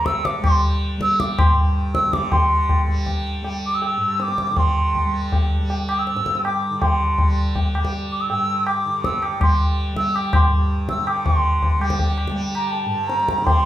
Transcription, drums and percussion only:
0.06 tabla ke
0.25 tabla ke
0.44 tabla na, tabla ge
1.01 tabla ke
1.20 tabla ke
1.39 tabla na, tabla ge
1.95 tabla ke
2.13 tabla ke
2.32 tabla tin, tabla ge
2.69 tabla tin, tabla ge
3.06 tabla tin, tabla ge
3.44 tabla tin
3.82 tabla tin
4.20 tabla te
4.28 tabla te
4.38 tabla ke
4.47 tabla te
4.57 tabla tin, tabla ge
4.95 tabla tin, tabla ge
5.32 tabla tin, tabla ge
5.70 tabla tin
5.89 tabla na
6.07 tabla te
6.17 tabla te
6.26 tabla ke
6.35 tabla te
6.45 tabla na
6.82 tabla tin, tabla ge
7.18 tabla tin, tabla ge
7.56 tabla tin, tabla ge
7.75 tabla na
7.85 tabla ke
7.93 tabla tin
8.30 tabla tin
8.67 tabla na
9.04 tabla ke
9.22 tabla na
9.41 tabla na, tabla ge
9.96 tabla ke
10.16 tabla na
10.33 tabla na, tabla ge
10.89 tabla ke
11.07 tabla na
11.26 tabla tin, tabla ge
11.63 tabla tin, tabla ge
11.81 tabla na
11.90 tabla ke
11.99 tabla tin, tabla ge
12.18 tabla na
12.27 tabla ke
12.36 tabla tin
12.55 tabla na
12.73 tabla tin
13.09 tabla te
13.20 tabla te
13.28 tabla ke
13.38 tabla te
13.47 tabla tin, tabla ge

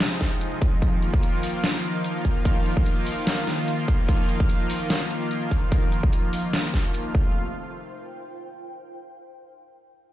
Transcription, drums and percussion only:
0.00 snare, closed hi-hat
0.21 kick, snare, closed hi-hat
0.41 closed hi-hat
0.62 kick, closed hi-hat
0.82 kick, closed hi-hat
1.02 closed hi-hat
1.14 kick
1.23 closed hi-hat
1.43 open hi-hat
1.64 snare, closed hi-hat
1.84 closed hi-hat
2.04 closed hi-hat
2.25 kick, closed hi-hat
2.45 kick, closed hi-hat
2.66 closed hi-hat
2.77 kick
2.86 closed hi-hat
3.07 open hi-hat
3.27 snare, closed hi-hat
3.47 snare, closed hi-hat
3.68 closed hi-hat
3.88 kick, closed hi-hat
4.09 kick, closed hi-hat
4.29 closed hi-hat
4.40 kick
4.49 closed hi-hat
4.70 open hi-hat
4.90 snare, closed hi-hat
5.11 closed hi-hat
5.31 closed hi-hat
5.51 kick, closed hi-hat
5.72 kick, closed hi-hat
5.92 closed hi-hat
6.03 kick
6.13 closed hi-hat
6.33 open hi-hat
6.53 snare, closed hi-hat
6.74 kick, snare, closed hi-hat
6.94 closed hi-hat
7.15 kick

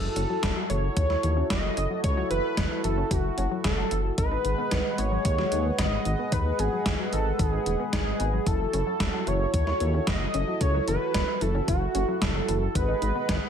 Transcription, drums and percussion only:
0.16 closed hi-hat
0.43 kick, snare, closed hi-hat
0.70 closed hi-hat
0.97 kick, closed hi-hat
1.10 snare
1.23 closed hi-hat
1.50 kick, snare, closed hi-hat
1.77 closed hi-hat
2.04 kick, closed hi-hat
2.31 closed hi-hat
2.57 kick, snare, closed hi-hat
2.84 closed hi-hat
3.11 kick, closed hi-hat
3.38 closed hi-hat
3.64 kick, snare, closed hi-hat
3.91 closed hi-hat
4.18 kick, closed hi-hat
4.45 closed hi-hat
4.71 kick, snare, closed hi-hat
4.98 closed hi-hat
5.25 kick, closed hi-hat
5.38 snare
5.52 closed hi-hat
5.79 kick, snare, closed hi-hat
6.05 closed hi-hat
6.32 kick, closed hi-hat
6.59 closed hi-hat
6.86 kick, snare, closed hi-hat
7.13 closed hi-hat
7.39 kick, closed hi-hat
7.66 closed hi-hat
7.93 kick, snare, closed hi-hat
8.20 closed hi-hat
8.46 kick, closed hi-hat
8.73 closed hi-hat
9.00 kick, snare, closed hi-hat
9.27 closed hi-hat
9.54 kick, closed hi-hat
9.67 snare
9.80 closed hi-hat
10.07 kick, snare, closed hi-hat
10.34 closed hi-hat
10.61 kick, closed hi-hat
10.88 closed hi-hat
11.14 kick, snare, closed hi-hat
11.41 closed hi-hat
11.68 kick, closed hi-hat
11.95 closed hi-hat
12.22 kick, snare, closed hi-hat
12.49 closed hi-hat
12.75 kick, closed hi-hat
13.02 closed hi-hat
13.29 kick, snare, closed hi-hat

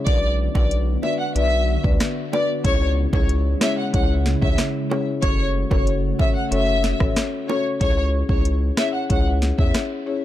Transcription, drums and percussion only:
0.07 kick, closed hi-hat
0.55 kick, high bongo
0.71 closed hi-hat
1.03 low bongo
1.36 closed hi-hat
1.84 kick
2.00 cross-stick, snare, closed hi-hat
2.33 high bongo, low bongo
2.65 kick, closed hi-hat
3.13 kick, high bongo
3.29 closed hi-hat
3.61 cross-stick, snare, low bongo
3.94 kick, closed hi-hat
4.26 snare
4.42 kick
4.58 cross-stick, snare, closed hi-hat
4.91 high bongo, low bongo
5.22 kick, closed hi-hat
5.71 kick, high bongo
5.87 closed hi-hat
6.19 kick, low bongo
6.52 closed hi-hat
6.84 snare
7.00 kick, cross-stick
7.16 cross-stick, snare, closed hi-hat
7.49 high bongo, low bongo
7.81 kick, closed hi-hat
8.29 kick
8.45 closed hi-hat
8.77 cross-stick, snare
9.10 kick, closed hi-hat
9.42 snare
9.59 kick
9.74 cross-stick, snare, closed hi-hat

